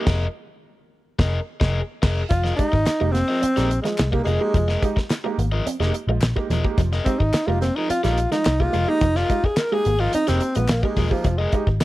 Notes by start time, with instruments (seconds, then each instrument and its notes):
0.06 picked electric bass F1, overdriven electric guitar G#4 A#4 D#5, kick, snare, crash
1.19 picked electric bass F1, overdriven electric guitar G#4 A#4 D#5, kick, snare
1.60 picked electric bass F1, overdriven electric guitar G#4 A#4 D#5, kick, snare
2.02 picked electric bass F1, overdriven electric guitar G#4 A#4 D#5, kick, snare, crash
2.29 picked electric bass F1, clean electric guitar F3, upright piano F3, tenor saxophone F4, muted overdriven electric guitar stroke, kick, closed hi-hat
2.44 overdriven electric guitar G#4 A#4 D#5, muted clean electric guitar stroke, snare
2.56 clean electric guitar G#3, tenor saxophone D#4, upright piano D#4 G4, muted overdriven electric guitar stroke, kick, closed hi-hat
2.72 picked electric bass G#1, muted overdriven electric guitar stroke, kick
2.87 muted overdriven electric guitar stroke, muted clean electric guitar stroke, muted picked electric bass stroke, snare, clap, closed hi-hat
3.00 picked electric bass F1, clean electric guitar G#3, upright piano G#3 A#3 D#4 G4, muted overdriven electric guitar stroke
3.12 clean electric guitar A#3, tenor saxophone C4, snare, closed hi-hat
3.28 upright piano F3, overdriven electric guitar G#4 A#4 D#5
3.42 clean electric guitar C4, muted overdriven electric guitar stroke, muted picked electric bass stroke, closed hi-hat
3.56 picked electric bass A#1, upright piano G#3 A#3 D#4 G4, overdriven electric guitar G#4 A#4 D#5, muted clean electric guitar stroke, snare, closed hi-hat
3.70 muted overdriven electric guitar stroke, closed hi-hat
3.82 upright piano F3, tenor saxophone G#3, clean electric guitar G#3, muted overdriven electric guitar stroke, snare, closed hi-hat
3.98 picked electric bass C2, muted overdriven electric guitar stroke, snare, clap, closed hi-hat
4.10 upright piano G#3 A#3 D#4 G4, tenor saxophone A#3, muted overdriven electric guitar stroke, kick
4.24 picked electric bass F1, upright piano F3, tenor saxophone G#3, clean electric guitar G#3, overdriven electric guitar G#4 A#4, closed hi-hat
4.28 overdriven electric guitar D#5
4.41 upright piano G#3 A#3 D#4 G4, muted overdriven electric guitar stroke
4.54 picked electric bass F1, clean electric guitar F3, upright piano F3, muted overdriven electric guitar stroke, kick, closed hi-hat
4.68 overdriven electric guitar G#4 A#4 D#5, muted clean electric guitar stroke, snare
4.82 clean electric guitar G#3, upright piano D#4 G4, muted overdriven electric guitar stroke, kick, closed hi-hat
4.96 muted overdriven electric guitar stroke, muted picked electric bass stroke, kick, snare
5.10 muted clean electric guitar stroke, muted overdriven electric guitar stroke, snare, clap, closed hi-hat
5.24 upright piano G#3 A#3 D#4 G4, clean electric guitar G#3, muted overdriven electric guitar stroke
5.38 picked electric bass G#1, clean electric guitar A#3, closed hi-hat
5.52 upright piano F3, overdriven electric guitar G#4 A#4 D#5
5.66 clean electric guitar C4, muted overdriven electric guitar stroke, muted picked electric bass stroke, closed hi-hat
5.80 picked electric bass F1, upright piano G#3 A#3 D#4 G4, overdriven electric guitar G#4 A#4 D#5, muted clean electric guitar stroke, snare
5.94 muted overdriven electric guitar stroke, closed hi-hat
6.07 picked electric bass A#1, upright piano F3, clean electric guitar G#3, muted overdriven electric guitar stroke
6.22 picked electric bass A#1, muted overdriven electric guitar stroke, snare, clap, closed hi-hat
6.36 upright piano G#3 A#3 D#4 G4, muted overdriven electric guitar stroke, kick
6.50 picked electric bass E1, upright piano F3, clean electric guitar F3, overdriven electric guitar G#4 A#4 D#5, snare, closed hi-hat
6.64 upright piano G#3 A#3 D#4 G4, muted overdriven electric guitar stroke, kick
6.78 picked electric bass F1, upright piano F3, clean electric guitar F3, muted overdriven electric guitar stroke, kick, closed hi-hat
6.92 overdriven electric guitar G#4 A#4 D#5, muted clean electric guitar stroke, snare
7.05 clean electric guitar G#3, tenor saxophone C4, upright piano D#4 G4, muted overdriven electric guitar stroke, kick, closed hi-hat
7.19 picked electric bass G#1, tenor saxophone D#4, muted overdriven electric guitar stroke, kick
7.34 muted clean electric guitar stroke, muted picked electric bass stroke, muted overdriven electric guitar stroke, snare, clap, closed hi-hat
7.46 picked electric bass F1, clean electric guitar G#3, upright piano G#3 A#3 D#4 G4, tenor saxophone F4, muted overdriven electric guitar stroke
7.61 clean electric guitar A#3, tenor saxophone C4, snare, closed hi-hat
7.75 upright piano F3, tenor saxophone D#4, overdriven electric guitar G#4 A#4 D#5
7.90 clean electric guitar C4, tenor saxophone F4, muted picked electric bass stroke, muted overdriven electric guitar stroke, closed hi-hat
8.03 picked electric bass A#1, upright piano G#3 A#3 D#4 G4, tenor saxophone F4, overdriven electric guitar G#4 A#4 D#5, muted clean electric guitar stroke, snare, closed hi-hat
8.18 muted overdriven electric guitar stroke, closed hi-hat
8.31 upright piano F3, clean electric guitar G#3, tenor saxophone D#4, muted overdriven electric guitar stroke, snare, closed hi-hat
8.45 picked electric bass C2, muted overdriven electric guitar stroke, snare, clap, closed hi-hat
8.60 upright piano G#3 A#3 D#4 G4, tenor saxophone F4, muted overdriven electric guitar stroke, kick
8.73 picked electric bass F1, upright piano F3, clean electric guitar G#3, overdriven electric guitar G#4 A#4 D#5, closed hi-hat
8.88 upright piano G#3 A#3 D#4 G4, tenor saxophone D#4, muted overdriven electric guitar stroke
9.01 picked electric bass F1, clean electric guitar F3, upright piano F3, muted overdriven electric guitar stroke, kick, closed hi-hat
9.15 tenor saxophone F4, overdriven electric guitar G#4 A#4 D#5, muted clean electric guitar stroke, snare
9.30 clean electric guitar G#3, upright piano D#4 G4, muted overdriven electric guitar stroke, kick, closed hi-hat
9.44 tenor saxophone G#4, muted picked electric bass stroke, muted overdriven electric guitar stroke, kick
9.57 tenor saxophone A#4, muted clean electric guitar stroke, muted overdriven electric guitar stroke, snare, clap, closed hi-hat
9.72 upright piano G#3 A#3 D#4 G4, clean electric guitar G#3, tenor saxophone G#4, muted overdriven electric guitar stroke
9.85 picked electric bass G#1, clean electric guitar A#3, closed hi-hat
9.99 upright piano F3, tenor saxophone F4, overdriven electric guitar G#4 A#4 D#5
10.13 clean electric guitar C4, tenor saxophone D#4, muted overdriven electric guitar stroke, muted picked electric bass stroke, closed hi-hat
10.27 picked electric bass F1, upright piano G#3 A#3 D#4 G4, tenor saxophone C4, overdriven electric guitar G#4 A#4 D#5, muted clean electric guitar stroke, snare, closed hi-hat
10.40 muted overdriven electric guitar stroke, closed hi-hat
10.55 picked electric bass A#1, upright piano F3, clean electric guitar G#3, tenor saxophone B3, muted overdriven electric guitar stroke, closed hi-hat
10.69 picked electric bass A#1, tenor saxophone A#3, muted overdriven electric guitar stroke, snare, clap, closed hi-hat
10.83 tenor saxophone G#3, upright piano G#3 A#3 D#4 G4, muted overdriven electric guitar stroke, kick
10.96 picked electric bass E1, clean electric guitar F3, upright piano F3, overdriven electric guitar G#4 A#4 D#5, kick, snare, open hi-hat
11.11 tenor saxophone F3, upright piano G#3 A#3 D#4 G4, muted overdriven electric guitar stroke, kick
11.24 picked electric bass F1, clean electric guitar F3, upright piano F3, muted overdriven electric guitar stroke, kick, closed hi-hat
11.38 tenor saxophone G#3, overdriven electric guitar G#4 A#4 D#5, muted clean electric guitar stroke
11.52 clean electric guitar G#3, upright piano D#4 G4, muted overdriven electric guitar stroke, kick, closed hi-hat
11.67 picked electric bass G#1, muted overdriven electric guitar stroke, kick
11.80 muted clean electric guitar stroke, muted overdriven electric guitar stroke, snare, closed hi-hat